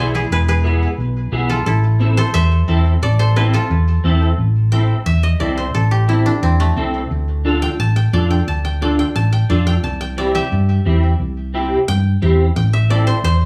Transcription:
0.00 0.24 B1 medium
0.00 0.20 B3 medium
0.00 0.20 E4 medium
0.00 0.20 G#4 medium
0.00 1.41 D5 medium
0.00 0.44 E5 medium
0.15 1.56 E4 medium
0.15 0.32 G#4 medium
0.30 0.85 E1 medium
0.30 0.38 G#4 medium
0.30 0.38 B4 medium
0.48 1.55 G#4 medium
0.48 2.23 B4 medium
0.64 0.88 B3 medium
0.64 0.88 E4 medium
0.64 0.88 G#4 medium
0.98 1.25 B1 medium
1.32 1.59 B1 medium
1.32 1.56 B3 medium
1.32 1.56 E4 medium
1.32 1.56 G#4 medium
1.49 1.73 F4 medium
1.49 1.66 A4 medium
1.66 2.20 A1 loud
1.66 3.36 E4 medium
1.66 2.18 A4 medium
2.00 2.24 C4 medium
2.00 2.24 E4 medium
2.00 2.25 A4 medium
2.17 3.02 A4 medium
2.17 2.34 C5 loud
2.34 2.61 E2 medium
2.34 3.19 C5 medium
2.34 3.59 E5 loud
2.68 2.95 E2 medium
2.68 2.92 C4 medium
2.68 2.92 E4 medium
2.68 2.92 A4 medium
3.02 3.57 A1 loud
3.02 3.19 A4 medium
3.02 4.63 D5 loud
3.19 3.54 A4 medium
3.19 3.42 C5 medium
3.36 3.60 C4 medium
3.36 3.43 E4 medium
3.36 3.60 E4 medium
3.36 3.61 A4 medium
3.36 3.42 B4 medium
3.53 5.12 F4 medium
3.53 5.45 A4 medium
3.70 3.97 E2 medium
4.04 4.31 E2 medium
4.04 4.28 C4 medium
4.04 4.28 E4 medium
4.04 4.29 A4 loud
4.38 4.93 A1 medium
4.72 4.96 C4 medium
4.72 4.97 E4 medium
4.72 4.97 A4 medium
4.72 6.06 G5 medium
5.06 5.33 E2 medium
5.06 5.29 E5 medium
5.23 5.46 D#5 medium
5.40 5.68 C2 medium
5.40 5.64 C4 medium
5.40 5.65 E4 medium
5.40 5.65 A4 medium
5.40 7.00 D5 medium
5.57 7.29 C5 medium
5.74 6.29 A1 medium
5.74 7.65 A4 medium
5.91 7.95 G4 medium
6.08 6.32 C4 medium
6.08 6.32 E4 medium
6.08 8.35 E4 medium
6.08 6.33 A4 medium
6.26 8.68 D4 medium
6.43 6.70 E2 medium
6.43 9.03 C4 medium
6.60 9.48 A3 medium
6.76 7.04 C2 medium
6.76 7.01 C4 medium
6.76 7.01 E4 medium
6.76 7.01 A4 medium
7.11 7.65 D2 medium
7.45 7.69 D4 medium
7.45 7.69 F4 medium
7.45 7.69 A4 loud
7.62 7.96 G5 loud
7.79 8.06 A1 medium
7.79 8.47 A5 loud
7.96 8.30 G5 medium
8.13 8.40 F2 medium
8.13 8.37 D4 medium
8.13 8.37 F4 medium
8.13 8.37 A4 medium
8.13 8.82 D5 medium
8.31 8.64 G5 medium
8.47 9.02 D2 medium
8.47 9.15 A5 medium
8.65 8.99 G5 medium
8.81 9.05 D4 medium
8.81 9.05 F4 medium
8.81 9.06 A4 medium
8.81 9.49 D5 medium
8.99 9.32 G5 medium
9.16 9.43 A1 medium
9.16 9.83 A5 loud
9.33 9.66 G5 medium
9.49 9.77 F2 medium
9.49 9.73 D4 medium
9.49 9.74 F4 medium
9.49 9.74 A4 medium
9.49 10.18 D5 medium
9.67 10.00 G5 medium
9.83 10.38 C2 loud
9.83 11.09 A5 medium
10.01 11.35 G5 medium
10.17 10.41 C4 medium
10.17 10.41 E4 medium
10.17 10.42 G4 medium
10.17 11.78 D5 medium
10.35 12.39 G4 medium
10.35 11.85 E5 medium
10.52 10.79 G2 medium
10.85 11.13 E2 medium
10.85 11.09 C4 medium
10.85 11.10 E4 medium
10.85 11.10 G4 medium
11.20 11.74 C2 loud
11.54 11.78 C4 medium
11.54 11.78 E4 medium
11.54 11.78 G4 loud
11.88 12.15 G2 medium
11.88 12.56 G5 loud
12.22 12.49 E2 medium
12.22 12.46 C4 medium
12.22 12.46 E4 medium
12.22 12.46 G4 medium
12.56 13.11 A1 loud
12.56 13.45 G5 medium
12.73 13.45 E5 medium
12.90 13.14 C4 medium
12.90 13.14 E4 medium
12.90 13.14 A4 medium
12.90 13.45 D5 medium
13.07 13.24 C5 medium
13.24 13.45 E2 medium
13.24 13.45 C5 loud

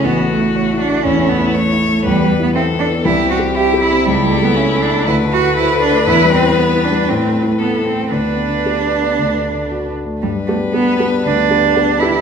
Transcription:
0.04 1.02 A1 soft
0.04 0.29 B3 medium
0.04 1.03 F#4 medium
0.22 0.48 A3 soft
0.30 0.53 A3 medium
0.39 0.65 E4 soft
0.54 0.79 A3 medium
0.54 0.82 C#5 soft
0.73 0.99 E4 soft
0.80 1.05 D4 medium
0.89 1.16 A3 soft
1.03 1.32 E2 soft
1.03 1.31 C#4 medium
1.03 1.56 E4 medium
1.22 1.49 A3 soft
1.29 1.55 B3 medium
1.38 1.65 E4 soft
1.54 2.03 A3 medium
1.54 2.04 C#5 medium
1.54 1.82 C#5 soft
1.72 1.99 E4 soft
1.89 2.05 A3 soft
2.04 3.03 E2 medium
2.04 2.41 G3 medium
2.04 2.54 B4 medium
2.22 2.49 B3 soft
2.40 2.48 B3 medium
2.40 2.66 E4 soft
2.55 2.63 C4 medium
2.55 3.06 A4 medium
2.55 2.83 E5 soft
2.73 2.99 E4 soft
2.79 2.87 D4 medium
2.90 3.06 B3 soft
3.05 4.03 C2 medium
3.05 3.30 E4 medium
3.05 3.56 G4 medium
3.23 3.50 C4 soft
3.30 3.38 F#4 medium
3.39 3.66 G4 soft
3.55 4.06 E4 medium
3.55 3.80 G4 medium
3.55 3.84 E5 soft
3.74 4.00 G4 soft
3.81 4.07 E4 medium
3.91 4.07 C4 soft
4.05 5.04 C#2 medium
4.05 4.46 G3 medium
4.05 5.09 E4 medium
4.25 4.51 A3 soft
4.41 4.57 B3 medium
4.41 4.67 A4 soft
4.56 4.83 C#4 medium
4.56 4.84 E5 medium
4.74 5.00 A4 soft
4.82 5.06 D4 medium
4.91 5.07 A3 soft
5.07 6.05 D2 medium
5.07 5.15 E4 medium
5.07 7.60 B4 medium
5.24 5.50 A3 soft
5.32 5.56 F#4 medium
5.40 5.67 A4 soft
5.57 5.81 E4 medium
5.57 5.84 C5 soft
5.75 6.01 A4 soft
5.81 6.06 D4 medium
5.91 6.07 A3 soft
6.07 7.05 E2 medium
6.07 6.32 E4 medium
6.24 6.51 G3 soft
6.33 6.59 C4 medium
6.42 6.68 E4 soft
6.58 6.85 B3 medium
6.58 6.85 B4 soft
6.74 7.01 E4 soft
6.84 7.10 D4 medium
6.92 7.08 G3 soft
7.09 8.10 A2 medium
7.09 7.47 C4 medium
7.26 7.53 A3 soft
7.43 7.70 E4 soft
7.48 7.53 A3 medium
7.59 7.85 B3 medium
7.59 8.10 A4 medium
7.59 7.87 A4 soft
7.77 8.05 E4 soft
7.86 8.13 C4 medium
7.93 8.12 A3 soft
8.11 9.14 D2 soft
8.11 9.96 D4 medium
8.11 9.92 B4 medium
8.30 8.58 B3 soft
8.48 8.76 D4 soft
8.66 8.94 G4 soft
8.84 9.11 D4 soft
9.01 9.18 B3 soft
9.19 10.20 D2 soft
9.36 9.63 A3 soft
9.54 9.81 D4 soft
9.71 9.99 F#4 soft
9.88 10.16 D4 soft
10.05 10.22 A3 soft
10.22 10.48 G2 medium
10.22 10.30 G3 medium
10.22 12.21 B4 medium
10.47 10.55 A3 medium
10.47 10.71 B3 soft
10.47 10.71 D4 soft
10.47 10.72 G4 soft
10.73 10.97 B3 medium
10.73 10.97 B3 soft
10.73 10.97 D4 soft
10.73 10.97 G4 soft
10.97 11.05 B3 medium
10.97 11.22 B3 soft
10.97 11.23 D4 soft
10.97 11.23 G4 soft
11.24 11.50 D2 soft
11.24 12.01 D4 medium
11.50 11.73 B3 soft
11.50 11.73 D4 soft
11.50 11.73 G4 soft
11.76 11.98 B3 soft
11.76 11.99 D4 soft
11.76 11.99 G4 soft
12.00 12.21 B3 soft
12.00 12.21 D4 soft
12.00 12.21 E4 medium
12.00 12.21 G4 soft

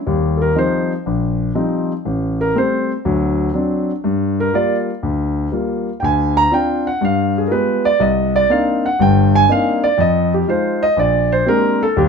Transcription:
0.07 0.50 D#2 medium
0.07 0.50 G3 medium
0.37 0.39 A4 medium
0.42 0.56 A#4 medium
0.55 0.92 F3 medium
0.55 0.91 G3 soft
0.55 0.92 C4 soft
0.55 0.92 D#4 medium
0.55 0.90 C5 medium
1.06 1.49 A#1 medium
1.55 1.91 F3 soft
1.55 1.91 G3 soft
1.55 1.91 C4 medium
1.55 1.91 D#4 medium
2.05 2.49 A1 medium
2.41 2.55 A#4 medium
2.55 2.91 G3 medium
2.55 2.91 A3 soft
2.55 2.91 C4 medium
2.55 2.90 C5 medium
3.05 3.48 D2 medium
3.05 3.48 F#3 medium
3.54 3.90 F#3 medium
3.54 3.90 C4 medium
3.54 3.90 D4 medium
4.04 4.47 G2 medium
4.40 4.54 A#4 medium
4.53 4.89 G3 medium
4.53 4.89 A#3 soft
4.53 4.89 F4 medium
4.53 4.75 D5 medium
5.03 5.46 D2 medium
5.52 5.88 G3 medium
5.52 5.88 A#3 soft
5.52 5.88 F4 medium
6.00 6.45 D2 medium
6.00 6.04 G5 medium
6.04 6.36 G#5 medium
6.37 6.51 A#5 loud
6.51 6.87 C4 medium
6.51 6.87 D4 soft
6.51 6.87 F4 medium
6.51 6.86 G5 medium
6.87 7.01 F#5 medium
7.01 7.44 G2 medium
7.01 7.36 F5 medium
7.38 7.51 G#4 medium
7.47 7.86 G#3 medium
7.47 7.86 B3 soft
7.47 7.86 F4 soft
7.47 7.86 G4 medium
7.47 7.51 A#4 medium
7.52 7.84 B4 medium
7.85 8.00 D5 loud
7.99 8.43 C2 medium
7.99 8.34 D#5 medium
8.36 8.50 D5 loud
8.49 8.85 A#3 medium
8.49 8.85 C4 soft
8.49 8.85 D4 soft
8.49 8.85 D#4 medium
8.49 8.83 F5 medium
8.86 8.99 F#5 medium
8.99 9.42 G1 medium
8.99 9.43 G2 medium
8.99 9.33 G5 medium
9.35 9.49 G#5 loud
9.49 9.84 A#3 medium
9.49 9.84 C4 soft
9.49 9.84 D4 soft
9.49 9.85 D#4 medium
9.49 9.83 F5 medium
9.84 9.98 D5 loud
9.98 10.41 F2 medium
9.98 10.32 D#5 medium
10.34 10.48 G4 medium
10.47 10.83 G#3 medium
10.47 10.83 D#4 soft
10.47 10.83 F4 medium
10.47 10.82 C5 medium
10.83 10.97 D#5 loud
10.97 11.40 A#1 medium
10.97 11.31 D5 medium
11.32 11.47 C5 medium
11.46 11.82 G#3 medium
11.46 11.82 A#3 medium
11.46 11.82 C4 medium
11.46 11.82 D4 soft
11.46 11.82 G4 medium
11.46 11.81 A#4 loud
11.83 11.97 A4 medium
11.97 12.09 D#2 medium
11.97 12.09 G3 medium
11.97 12.09 G4 medium

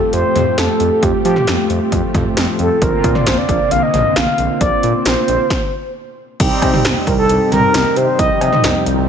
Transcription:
0.00 2.78 F3 medium
0.00 2.78 A3 medium
0.00 2.78 C4 medium
0.00 2.78 F4 medium
0.00 2.78 G4 medium
0.00 0.13 A4 loud
0.13 0.23 F2 loud
0.13 0.59 C5 loud
0.13 closed hi-hat medium
0.35 0.45 F2 loud
0.35 closed hi-hat medium
0.35 mid tom medium
0.58 0.68 F2 loud
0.58 1.04 A4 loud
0.58 snare loud
0.58 closed hi-hat medium
0.80 0.90 F2 loud
0.80 closed hi-hat medium
1.03 1.13 F2 loud
1.03 1.25 G4 medium
1.03 kick loud
1.03 closed hi-hat medium
1.25 1.35 F3 loud
1.25 1.67 G4 medium
1.25 closed hi-hat medium
1.36 mid tom medium
1.47 1.57 F2 loud
1.47 snare loud
1.47 closed hi-hat medium
1.70 1.80 F2 loud
1.70 closed hi-hat medium
1.92 2.02 F2 loud
1.92 kick medium
1.92 closed hi-hat medium
2.14 2.24 F2 loud
2.14 kick medium
2.14 closed hi-hat medium
2.14 mid tom medium
2.37 2.47 F2 loud
2.37 snare loud
2.37 closed hi-hat medium
2.59 2.69 F2 loud
2.59 2.83 A4 medium
2.59 closed hi-hat medium
2.82 2.92 A#1 loud
2.82 5.48 C3 medium
2.82 5.48 D3 medium
2.82 5.46 D3 medium
2.82 5.48 A#3 medium
2.82 5.46 A#3 medium
2.82 5.46 C4 medium
2.82 5.46 F4 medium
2.82 3.17 A#4 loud
2.82 kick loud
2.82 closed hi-hat medium
2.82 swell medium
3.04 3.14 A#2 loud
3.04 kick medium
3.04 closed hi-hat medium
3.15 3.28 D5 loud
3.15 mid tom medium
3.26 3.36 A#1 loud
3.26 3.39 C5 loud
3.26 snare loud
3.26 closed hi-hat medium
3.38 3.73 D5 loud
3.49 3.59 A#1 loud
3.49 kick medium
3.49 closed hi-hat medium
3.71 3.81 A#1 loud
3.71 3.84 F5 loud
3.71 closed hi-hat medium
3.83 4.18 D#5 loud
3.94 4.04 A#1 loud
3.94 closed hi-hat medium
3.94 mid tom medium
4.16 4.26 A#1 loud
4.16 4.60 F5 loud
4.16 snare loud
4.16 closed hi-hat medium
4.38 4.48 A#1 medium
4.38 closed hi-hat medium
4.61 4.71 A#1 loud
4.61 5.03 D5 loud
4.61 kick loud
4.61 closed hi-hat medium
4.83 4.93 A#2 loud
4.83 closed hi-hat medium
5.05 5.16 A#1 loud
5.05 5.91 C5 medium
5.05 snare loud
5.05 closed hi-hat medium
5.28 5.38 A#1 loud
5.28 closed hi-hat medium
5.50 kick loud
5.50 snare medium
6.40 6.50 C2 loud
6.40 9.09 C3 medium
6.40 9.09 G3 medium
6.40 8.17 G3 medium
6.40 9.09 C4 medium
6.40 9.09 D#4 medium
6.40 9.09 G4 medium
6.40 kick loud
6.40 closed hi-hat medium
6.40 crash loud
6.62 6.72 C3 medium
6.62 kick medium
6.62 closed hi-hat medium
6.62 cowbell medium
6.74 mid tom loud
6.85 6.95 C2 loud
6.85 snare loud
6.85 closed hi-hat medium
7.07 7.17 C2 loud
7.07 7.12 A#4 medium
7.07 kick medium
7.07 closed hi-hat medium
7.18 7.28 C2 loud
7.18 7.50 A4 medium
7.29 7.39 C2 loud
7.29 closed hi-hat medium
7.52 7.62 C2 loud
7.52 7.98 A#4 loud
7.52 closed hi-hat medium
7.52 mid tom medium
7.74 7.84 C2 loud
7.74 snare loud
7.74 closed hi-hat medium
7.96 8.07 C3 loud
7.96 8.18 C5 loud
7.96 closed hi-hat medium
8.19 8.29 C2 loud
8.19 9.09 F3 medium
8.19 8.40 D#5 loud
8.19 kick loud
8.19 closed hi-hat medium
8.41 8.51 C3 loud
8.41 8.83 D#5 loud
8.41 closed hi-hat medium
8.41 cowbell medium
8.53 mid tom loud
8.64 8.74 C2 loud
8.64 snare loud
8.64 closed hi-hat medium
8.86 8.96 C2 loud
8.86 closed hi-hat medium
8.97 9.07 C2 loud

